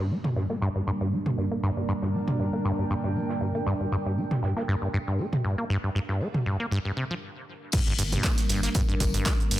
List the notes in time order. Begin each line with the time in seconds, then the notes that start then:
Already playing: G3 A#3 D4 A#4
0.00 G2
0.10 A#3 A#4, tambourine
0.24 snare, mid tom
0.36 G2, snare, tambourine
0.50 A#3, snare
0.62 G2
0.75 G2
0.87 G2
1.01 G2 G5, closed hi-hat
1.12 A#3, tambourine
1.26 mid tom
1.37 G2, tambourine
1.51 A#3
1.62 G2, tambourine
1.77 G2
1.88 G2, tambourine
2.02 G2, snare
2.14 A#3, open hi-hat
2.28 mid tom
2.39 G2, tambourine
2.53 A#3
2.65 G2, tambourine
2.79 G2
2.90 G2, tambourine
3.04 G2
3.16 A#3, tambourine
3.29 snare
3.41 G2, tambourine
3.55 A#3, closed hi-hat
3.66 G2, tambourine
3.80 G2
3.92 G2, tambourine
4.06 G2
4.17 A#3, tambourine
4.31 snare, mid tom
4.43 G2, snare, tambourine
4.56 A#3, snare
4.68 G2, tambourine
4.82 G2
4.94 G2
5.07 G2, closed hi-hat
5.19 A#3, tambourine
5.33 mid tom
5.44 G2, tambourine
5.58 A#3
5.70 G2, tambourine
5.83 G2
5.95 G2, tambourine
6.09 G2, snare
6.21 A#3, open hi-hat
6.34 mid tom
6.46 G2, tambourine
6.60 A#3
6.71 G2, tambourine
6.85 G2
6.97 C3, tambourine
7.11 F3
7.72 G2 G3 A#3 D4 A#4, kick, closed hi-hat, crash, tambourine, shaker
7.87 G1 G2, shaker
7.98 G1 G2, open hi-hat, tambourine, shaker
8.12 G2, closed hi-hat, mid tom, shaker
8.23 A#3, kick, snare, clap, tambourine, shaker
8.38 snare, closed hi-hat, shaker
8.49 G1 G2, snare, open hi-hat, tambourine, shaker
8.63 A#3, snare, closed hi-hat, shaker
8.75 G2, kick, closed hi-hat, tambourine, shaker
8.89 G2, shaker
9.00 G1 G2, kick, open hi-hat, tambourine, shaker
9.14 G2, closed hi-hat, shaker
9.26 A#3, kick, snare, clap, closed hi-hat, tambourine, shaker
9.40 shaker
9.51 G1 G2, open hi-hat, tambourine, shaker